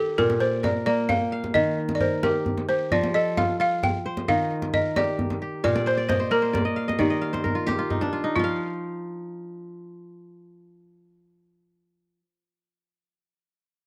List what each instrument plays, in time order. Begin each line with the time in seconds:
Already playing: kora D#3 G4 A#4, balafon A4
0.18 kora A#2, balafon A#4, djembe bass
0.30 djembe slap, djembe tone
0.40 balafon C5, kora D5
0.63 kora A#4, balafon D5, djembe slap, djembe tone, djembe bass
0.86 kora A#3, balafon D5
1.09 balafon F5, kora G5, djembe slap, djembe tone, djembe bass
1.21 djembe slap
1.32 kora F5
1.44 djembe slap, djembe tone
1.54 kora D#3, balafon D#5, djembe bass
1.78 djembe slap
1.89 djembe slap, djembe tone
1.95 balafon D5
2.00 kora A#4, balafon C5, djembe slap, djembe bass
2.23 kora G4, balafon A#4, djembe slap, djembe tone
2.46 djembe bass
2.58 djembe slap, djembe tone
2.69 kora G4, balafon C5
2.91 kora F3, balafon D5, djembe bass
3.03 djembe slap, djembe tone
3.14 kora A4, balafon D#5
3.37 kora F4, balafon F5, djembe slap, djembe tone, djembe bass
3.60 kora F4, balafon F5
3.83 balafon G5, djembe tone, djembe bass
3.95 djembe slap
4.06 kora C5
4.17 djembe slap, djembe tone
4.28 kora D#3 D#5, balafon F5, djembe bass
4.51 djembe slap
4.62 djembe slap, djembe tone
4.73 kora A#4, balafon D#5, djembe slap, djembe bass
4.96 kora G4, balafon D5, djembe slap, djembe tone
5.19 djembe bass
5.30 djembe slap, djembe tone
5.42 kora G4
5.64 kora A#2 F5, balafon D5, djembe slap, djembe bass
5.75 kora D5, djembe slap, djembe tone
5.86 kora C5, balafon C5, djembe slap
5.97 kora D5
6.08 balafon C5, kora D#5, djembe slap, djembe tone, djembe bass
6.20 kora C5
6.31 kora A#3 A#4, balafon A#4, djembe slap
6.42 kora C5, djembe slap
6.53 kora D5, djembe slap, djembe tone, djembe bass
6.65 kora D#5, djembe slap
6.76 kora F5
6.88 kora D#5, djembe slap, djembe tone
6.99 kora D#3 D5, balafon G4, djembe bass
7.10 kora D#5
7.21 kora F5
7.33 kora C5, djembe slap, djembe tone
7.44 kora A#4, djembe bass
7.55 kora F4
7.67 kora G4, djembe slap, djembe tone
7.79 kora F4
7.90 kora D#4, djembe slap, djembe bass
8.01 kora D4, djembe slap, djembe tone
8.13 kora F4, djembe slap
8.24 kora D#4
8.36 kora F3 F4, balafon F4, djembe bass
8.44 kora F5